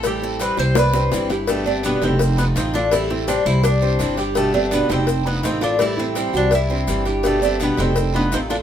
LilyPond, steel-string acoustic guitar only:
\new Staff \with { instrumentName = "Steel-string acoustic guitar" } { \time 4/4 \key g \major \tempo 4 = 167 <e g c' e'>8 <g c' e'>8 <e g c' e'>4 r8 <g d' e'>8 <c e g d' e'>8 <g d' e'>8 | <b, d g b g'>8 <g b g'>8 <b, d g b g'>4 r8 <a c' f'>8 <c ees a c' f'>8 <a c' f'>8 | <e g c' e'>8 <g c' e'>8 <e g c' e'>4 r8 <g d' e'>8 <c e g d' e'>8 <g d' e'>8 | <b, d g b g'>8 <g b g'>8 <b, d g b g'>4 r8 <a c' f'>8 <c ees a c' f'>8 <a c' f'>8 |
<e g c' e'>8 <g c' e'>8 <e g c' e'>4 r8 <g d' e'>8 <c e g d' e'>8 <g d' e'>8 | <b, d g b g'>8 <g b g'>8 <b, d g b g'>4 r8 <a c' f'>8 <c ees a c' f'>8 <a c' f'>8 | }